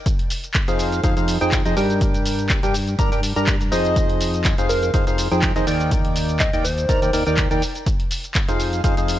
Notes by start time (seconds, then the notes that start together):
0.06 kick, closed hi-hat, shaker
0.19 closed hi-hat
0.30 open hi-hat, shaker
0.44 closed hi-hat, shaker
0.54 kick, clap, closed hi-hat, shaker
0.68 F2 F3 D#4 G#4 C5 F5, closed hi-hat, shaker
0.79 open hi-hat, shaker
0.92 closed hi-hat, shaker
1.03 F2 F3 D#4 G#4 C5 F5, kick, closed hi-hat, shaker
1.17 F2 F3 D#4 G#4 C5 F5, closed hi-hat, shaker
1.28 open hi-hat, shaker
1.41 F2 F3 D#4 G#4 C5 G5, closed hi-hat, shaker
1.52 kick, clap, closed hi-hat, shaker
1.65 F2 F3 D#4 G#4 C5 D#5, closed hi-hat, shaker
1.77 G2 G3 D4 G4 A#4 G5, open hi-hat, shaker
1.90 closed hi-hat, shaker
2.01 kick, closed hi-hat, shaker
2.14 closed hi-hat, shaker
2.25 open hi-hat, shaker
2.39 closed hi-hat, shaker
2.49 kick, clap, closed hi-hat, shaker
2.63 G2 G3 D4 G4 A#4 G5, closed hi-hat, shaker
2.74 open hi-hat, shaker
2.88 closed hi-hat, shaker
2.99 G3 D4 G4 A#4 A#5, kick, closed hi-hat, shaker
3.12 G2 G3 D4 G4 A#4 G5, closed hi-hat, shaker
3.23 open hi-hat, shaker
3.36 G2 G3 D4 G4 A#4 A#5, closed hi-hat, shaker
3.47 kick, clap, closed hi-hat, shaker
3.61 closed hi-hat, shaker
3.72 F2 F3 D#4 G#4 C5 D#5, open hi-hat, shaker
3.85 closed hi-hat, shaker
3.96 kick, closed hi-hat, shaker
4.09 closed hi-hat
4.21 open hi-hat, shaker
4.34 closed hi-hat, shaker
4.44 kick, clap, closed hi-hat, shaker
4.58 F2 F3 D#4 G#4 C5 F5, closed hi-hat, shaker
4.69 A#4, open hi-hat, shaker
4.83 A#4, closed hi-hat, shaker
4.94 F2 F3 D#4 G#4 C5 F5, kick, closed hi-hat, shaker
5.07 F2 F3 D#4 G#4 C5 F5, closed hi-hat, shaker
5.18 open hi-hat, shaker
5.31 F2 F3 D#4 G#4 C5 G5, closed hi-hat, shaker
5.42 kick, clap, closed hi-hat, shaker
5.56 F2 D#3 D#4 G#4 C5 D#5, closed hi-hat, shaker
5.67 D#2 D#3 D#4 A#4 D5 G5, open hi-hat, shaker
5.80 closed hi-hat, shaker
5.91 kick, closed hi-hat, shaker
6.05 closed hi-hat
6.16 open hi-hat, shaker
6.29 closed hi-hat, shaker
6.40 D#5, kick, clap, closed hi-hat, shaker
6.53 D#2 D#3 D#4 A#4 D5 D#5 G5, closed hi-hat, shaker
6.64 C5, open hi-hat, shaker
6.78 closed hi-hat, shaker
6.89 D#3 D#4 A#4 D5 A#5, kick, closed hi-hat, shaker
7.02 D#2 D#3 D#4 A#4 D5 G5, closed hi-hat, shaker
7.13 D#2 D#3 D#4 A#4 D5 G5, open hi-hat, shaker
7.27 D#2 D#3 D#4 A#4 D5 G5, closed hi-hat, shaker
7.37 kick, clap, closed hi-hat, shaker
7.51 D#2 D#3 D#4 A#4 D5 G5, closed hi-hat, shaker
7.62 open hi-hat, shaker
7.75 closed hi-hat, shaker
7.86 kick, closed hi-hat, shaker
8.00 closed hi-hat
8.11 open hi-hat, shaker
8.24 closed hi-hat, shaker
8.35 kick, clap, closed hi-hat, shaker
8.48 F2 F3 D#4 G#4 C5 F5, closed hi-hat, shaker
8.60 open hi-hat, shaker
8.73 closed hi-hat, shaker
8.84 F2 F3 D#4 G#4 C5 F5, kick, closed hi-hat, shaker
8.97 F2 F3 D#4 G#4 C5 F5, closed hi-hat, shaker
9.08 open hi-hat, shaker